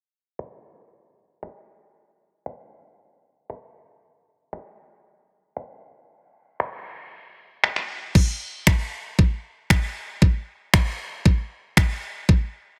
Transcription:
0.39 finger snap
1.43 finger snap
2.46 finger snap
3.50 finger snap
4.53 finger snap
5.57 finger snap
6.60 finger snap
7.64 finger snap
7.76 finger snap
8.15 kick, crash
8.67 finger snap, kick
9.19 kick
9.70 finger snap, kick
10.22 kick
10.74 finger snap, kick
11.26 kick
11.77 finger snap, kick
12.29 kick

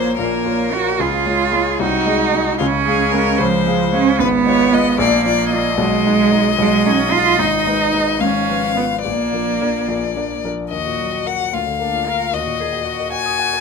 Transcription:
Already playing: A#1 A#2 A#3 F4 C5 C#5
0.18 A#1 A#2 A#3 A#4
0.46 A#3 F4 C#5
0.73 A#3 F4 F#4 C#5
1.00 C#2 C#3 F4 G#4
1.26 G#3 F4 C#5
1.53 G#3 F4 C#5
1.80 C2 C3 D#4 F#4
2.06 G#3 G#4 D#5
2.33 G#3 G#4 D#5
2.58 C#2 C#3 C#4 F4
2.85 G#3 G#4 F5
3.11 G#3 G#4 A#4 F5
3.38 C#2 C#3 F3 C5
3.67 G#3 G#4 F5
3.93 G#3 C#4 G#4 F5
4.19 G#1 G#2 B3 B4
4.45 G#3 F4 C#5 D#5
4.73 G#3 F4 D#5
4.98 A#1 A#2 A#3 D5
5.26 F3 F4 D5
5.51 F3 F4 D5 D#5
5.78 B1 B2 G#3
6.06 G#3 D#4 D#5
6.32 G#3 D#4 D#5
6.58 B1 B2 G#3
6.85 G#3 C#4 D#4 D#5
7.12 G#3 D#4 F4 D#5
7.38 G#1 G#2 D#4
7.66 G#3 D#4 B4
7.93 G#3 D#4 B4
8.20 G#1 G#2 C#4 F5
8.49 F3 F4 B4
8.76 F3 B3 F4 B4
9.03 A#1 A#2 A#3 D5
9.33 F3 D4 A#4
9.61 F3 D4 A#4
9.88 A#1 A#2
10.16 F3 D4 A#4
10.44 F3 D4 A#4
10.71 D#2 F#4 D#5
10.86 A#2
10.99 F#3
11.12 F#4
11.26 A#4 F#5
11.40 F#4
11.52 D2 F4 F5
11.66 D3
11.80 A#3 D4
11.93 F4
12.07 A#4
12.20 F4
12.33 D#2 F#4 D#5
12.47 A#2
12.60 A#3 G#4
12.72 F#4
12.85 F#4 D#5
12.99 A#4
13.12 F#5 G#5
13.26 D#6
13.39 F#5
13.53 A#4

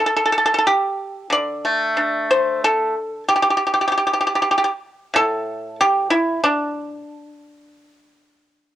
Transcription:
0.06 A4
0.16 A4
0.25 A4
0.32 A4
0.38 A4
0.45 A4
0.54 A4
0.58 A4
0.67 G4
1.30 D3 D5
1.65 A3
1.97 D4
2.31 C5
2.64 A4
3.29 G4
3.36 G4
3.42 G4
3.50 G4
3.57 G4
3.67 G4
3.74 G4
3.81 G4
3.88 G4
3.92 G4
3.97 G4
4.07 G4
4.13 G4
4.21 G4
4.27 G4
4.35 G4
4.42 G4
4.51 G4
4.58 G4
4.64 G4
5.14 A2 A4
5.81 G4
6.10 E4
6.44 D4

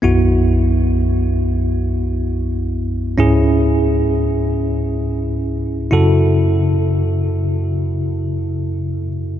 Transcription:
0.02 B1 F#2 B3 E4 F#4
3.18 C#2 G#2 C#4 E4 G#4
5.91 F#2 C#3 E4 F#4 A4

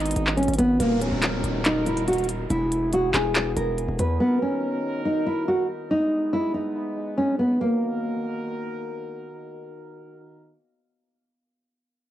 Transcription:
Already playing: G#1 G#3 B3 D#4
0.00 closed hi-hat
0.06 closed hi-hat
0.11 closed hi-hat
0.16 G#1, closed hi-hat
0.27 clap
0.37 C#4, closed hi-hat
0.43 closed hi-hat
0.48 G#1, closed hi-hat
0.54 closed hi-hat
0.58 G#1 B3, closed hi-hat
0.80 D#1 D#3 A#3 D#4 F#4 A#4, closed hi-hat, downlifter
1.01 C#4, closed hi-hat
1.12 D#1
1.22 clap, closed hi-hat
1.44 D#1, closed hi-hat
1.65 D#4, clap, closed hi-hat
1.86 E4, closed hi-hat
1.97 closed hi-hat
2.08 F#4, closed hi-hat
2.13 closed hi-hat
2.18 closed hi-hat
2.24 closed hi-hat
2.29 closed hi-hat
2.50 E1 E3 B3 E4 G#4, closed hi-hat
2.72 closed hi-hat
2.93 F#4, closed hi-hat
3.14 E1 G#4, clap, closed hi-hat
3.35 clap, closed hi-hat
3.57 E1 A#4, closed hi-hat
3.78 closed hi-hat
3.88 E1
3.99 E2 B4, closed hi-hat
4.20 D#3 B3 D#4 F#4 A#4
4.42 C#4
5.05 D#4
5.26 E4
5.48 F#4
5.91 G#3 B3 D#4
6.33 E4
6.54 D#4
7.18 C#4
7.39 B3
7.61 D#3 A#3 D#4 F#4 A#4

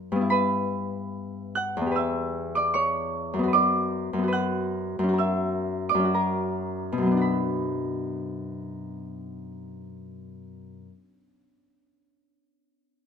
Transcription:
Already playing: F#2 A#3 C#4 F#4 C#5 C#6
0.12 G2 B3
0.21 E4
0.30 B4 B5
1.55 F#5 F#6
1.77 E2
1.81 B3
1.86 G4
1.91 B4
1.96 E5 E6
2.55 D5 D6
2.74 C#5 C#6
3.34 F#2
3.39 B3
3.43 F#4
3.48 B4
3.53 D5 D6
4.13 F#2
4.18 B3
4.23 F#4
4.28 B4
4.33 F#5 F#6
4.99 F#2
5.04 C#4
5.09 F#4
5.13 A#4
5.18 E5 E6
5.89 D5 D6
5.94 F#2
5.99 C#4
6.05 F#4
6.14 A#4 A#5
6.92 B2
6.98 F#2
7.02 F#3
7.06 B3
7.12 D4
7.17 F#4
7.21 B5

